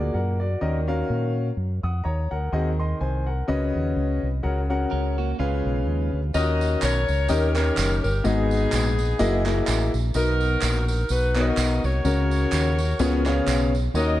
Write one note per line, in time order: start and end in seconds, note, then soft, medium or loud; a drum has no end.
0.00 0.11 D2 medium
0.00 0.36 A#2 medium
0.00 0.44 A#3 medium
0.00 0.14 F#4 medium
0.00 0.13 G#4 medium
0.00 0.16 D5 loud
0.14 0.55 F#2 medium
0.14 0.39 A#4 medium
0.14 0.39 F#5 medium
0.40 0.60 F#4 medium
0.40 0.85 D5 medium
0.61 1.02 D#2 medium
0.61 1.31 D#3 medium
0.61 0.78 C#4 medium
0.61 0.78 F#4 medium
0.61 0.78 A#4 medium
0.61 0.78 D#5 medium
0.87 1.46 C#4 medium
0.87 1.46 F#4 medium
0.87 1.46 A#4 medium
0.87 1.46 F5 medium
1.10 1.50 A#2 medium
1.57 1.79 F#2 medium
1.83 2.01 F2 medium
1.83 2.04 F#5 medium
1.83 2.04 D#6 medium
2.04 2.27 D#2 loud
2.04 2.30 C#5 medium
2.04 2.29 A#5 medium
2.31 2.49 D2 medium
2.31 2.77 A#4 medium
2.31 2.76 F#5 medium
2.52 2.93 D#2 medium
2.52 3.23 D#3 medium
2.52 2.69 C4 medium
2.52 2.69 F#4 medium
2.52 2.69 G#4 medium
2.52 2.69 D#5 medium
2.79 3.00 D#5 medium
2.79 2.99 C6 medium
3.01 3.41 C2 medium
3.01 3.26 C5 medium
3.01 3.26 G#5 medium
3.26 3.72 A#4 soft
3.26 3.72 F#5 medium
3.48 3.71 C#2 medium
3.48 4.18 C#3 medium
3.48 4.26 C#4 medium
3.48 4.26 F#4 medium
3.48 4.27 B4 medium
3.48 4.27 D#5 loud
3.75 3.93 D#2 medium
3.96 4.19 C#2 loud
4.23 4.41 C2 medium
4.43 4.85 C#2 medium
4.43 5.14 C#3 medium
4.43 4.60 C#4 medium
4.43 4.60 F#4 medium
4.43 4.60 A#4 medium
4.43 4.60 F#5 medium
4.70 5.28 C#4 medium
4.70 5.28 F#4 medium
4.70 5.28 A#4 medium
4.70 5.29 F#5 medium
4.91 5.33 C#2 medium
4.91 5.17 C#4 medium
4.91 5.16 A#4 medium
5.18 5.39 A#3 medium
5.18 5.38 F#4 medium
5.39 5.62 C#2 medium
5.39 6.09 C#3 medium
5.39 6.10 G#3 medium
5.39 6.18 C#4 medium
5.39 6.10 F4 medium
5.39 6.18 G#4 medium
5.39 6.18 B4 medium
5.39 6.18 F5 medium
5.66 5.87 B1 medium
5.87 6.09 D#2 medium
6.13 6.31 D2 medium
6.34 6.75 D#2 medium
6.34 7.05 D#3 medium
6.34 6.95 C#4 medium
6.34 6.95 D#4 medium
6.34 6.41 F4 medium
6.34 6.82 F#4 medium
6.34 6.82 A#4 medium
6.34 6.95 A#4 medium
6.34 6.79 D#5 loud
6.34 6.95 D#5 medium
6.34 tambourine medium
6.40 6.98 F#4 medium
6.61 tambourine medium
6.82 7.05 B1 medium
6.82 7.27 F#4 medium
6.82 7.27 A#4 medium
6.82 7.30 C#5 loud
6.82 clap medium
6.82 tambourine loud
7.08 7.27 C#2 medium
7.08 tambourine medium
7.29 7.70 D#2 loud
7.29 7.99 D#3 medium
7.29 7.50 C#4 medium
7.29 8.21 C#4 medium
7.29 7.50 D#4 medium
7.29 7.50 G4 medium
7.29 8.21 G4 medium
7.29 7.51 A#4 medium
7.29 8.02 A#4 loud
7.29 7.50 D#5 loud
7.29 tambourine medium
7.55 8.00 C#4 medium
7.55 8.00 D#4 medium
7.55 8.00 G4 medium
7.55 8.00 A#4 medium
7.55 8.00 C#5 medium
7.55 clap medium
7.55 tambourine medium
7.77 8.00 F#1 loud
7.77 clap loud
7.77 tambourine loud
8.03 8.22 G1 medium
8.03 8.23 A#4 medium
8.03 tambourine soft
8.24 8.65 G#1 loud
8.24 8.94 G#2 medium
8.24 8.85 B3 medium
8.24 9.64 B3 medium
8.24 8.85 D#4 medium
8.24 9.64 D#4 medium
8.24 8.85 F#4 medium
8.24 8.85 G#4 medium
8.24 9.68 G#4 medium
8.24 8.86 D#5 medium
8.24 tambourine medium
8.51 tambourine medium
8.72 9.13 A#1 loud
8.72 clap loud
8.72 tambourine loud
8.99 tambourine medium
9.19 9.61 F#1 loud
9.19 9.41 A#3 loud
9.19 9.41 E4 loud
9.19 9.41 F#4 loud
9.19 9.41 G#4 loud
9.19 9.41 D#5 loud
9.19 tambourine medium
9.45 9.90 A#3 medium
9.45 9.90 E4 medium
9.45 9.90 F#4 medium
9.45 9.90 G#4 medium
9.45 9.90 D#5 medium
9.45 clap medium
9.45 tambourine medium
9.67 9.90 A1 loud
9.67 clap loud
9.67 tambourine loud
9.94 10.12 A#1 medium
9.94 tambourine soft
10.14 10.55 B1 medium
10.14 10.85 B2 medium
10.14 10.76 B3 medium
10.14 10.76 D#4 medium
10.14 11.06 D#4 medium
10.14 10.76 F#4 medium
10.14 11.06 F#4 medium
10.14 10.76 A#4 medium
10.14 10.85 A#4 loud
10.14 10.76 D#5 medium
10.14 tambourine medium
10.40 tambourine medium
10.62 11.03 A#1 loud
10.62 clap loud
10.62 tambourine loud
10.88 11.09 A#4 medium
10.88 tambourine medium
11.09 11.50 B1 medium
11.09 12.01 D#4 medium
11.09 11.46 F#4 medium
11.09 11.47 B4 loud
11.09 tambourine medium
11.35 11.80 B3 medium
11.35 11.80 D#4 medium
11.35 11.80 F#4 medium
11.35 11.80 A#4 medium
11.35 11.41 C#5 medium
11.35 clap medium
11.35 tambourine medium
11.41 11.83 D#5 medium
11.47 11.84 F#4 medium
11.47 11.84 A#4 medium
11.47 11.84 D#5 loud
11.57 11.80 B1 loud
11.57 clap loud
11.57 tambourine loud
11.84 12.02 C2 medium
11.84 13.70 F#4 medium
11.84 13.70 A#4 medium
11.84 13.74 C#5 loud
11.84 tambourine soft
12.05 12.45 C#2 loud
12.05 12.75 C#3 medium
12.05 12.65 C#4 medium
12.05 12.66 F#4 medium
12.05 12.66 A#4 medium
12.05 tambourine medium
12.31 tambourine medium
12.52 12.93 D#2 loud
12.52 clap medium
12.52 tambourine loud
12.79 tambourine medium
12.99 13.40 C#2 loud
12.99 13.69 C#3 medium
12.99 13.21 B3 loud
12.99 13.21 C#4 medium
12.99 13.21 F4 medium
12.99 13.21 G#4 medium
12.99 13.21 C#5 loud
12.99 tambourine medium
13.26 13.70 B3 medium
13.26 13.70 C#4 medium
13.26 13.70 G#4 medium
13.26 13.70 C#5 loud
13.26 13.70 F5 medium
13.26 clap medium
13.26 tambourine medium
13.47 13.88 B1 loud
13.47 clap loud
13.47 tambourine loud
13.75 tambourine soft
13.94 14.20 D#2 loud
13.94 14.20 D#3 medium
13.94 14.20 A#3 medium
13.94 14.20 C#4 medium
13.94 14.20 D#4 medium
13.94 14.20 F#4 medium
13.94 14.20 A#4 medium
13.94 14.20 C#5 medium
13.94 14.20 D#5 loud
13.94 tambourine medium